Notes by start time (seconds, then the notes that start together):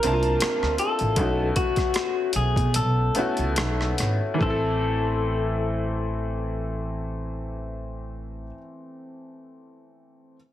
Already playing: A#3 C4 D4 F4 G4 A#4
0.03 C2 A#3 C4 D4 E4 A5, closed hi-hat
0.12 F4
0.23 closed hi-hat
0.40 muted upright bass stroke, cross-stick, closed hi-hat
0.62 D2, cross-stick
0.78 A4, closed hi-hat
0.99 A1, closed hi-hat
1.16 B1 A3 B3 C#4 E4, kick, closed hi-hat
1.21 F#4
1.56 F#4, kick, closed hi-hat
1.76 kick, cross-stick, closed hi-hat
1.94 cross-stick, closed hi-hat
2.33 B1 G#4, closed hi-hat
2.56 B2, kick, closed hi-hat
2.74 B1 A4, closed hi-hat
3.15 A3 B3 C#4 E4 F#4, muted upright bass stroke, closed hi-hat
3.37 C#2, closed hi-hat
3.56 B1, cross-stick, closed hi-hat
3.81 cross-stick
3.98 G#1, cross-stick, closed hi-hat
4.34 E3
4.38 A1 A3 C4, kick
4.42 E4 A4
4.50 A4